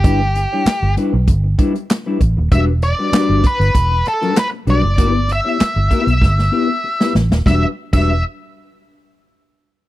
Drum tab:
CC |----------------|----------------|----------------|---x------------|
HH |x-x-x-x-x-xxx-x-|x-x-x-xxx-xxx-x-|x-x-x-xx--------|----------------|
CP |----x-------x---|----x-------x---|----x-----------|----------------|
SD |----o-------o---|----o-------o---|----o---oo---ooo|o---------------|
BD |o-------o-o---o-|o-----o-o-------|o-----o-o-------|o--o------------|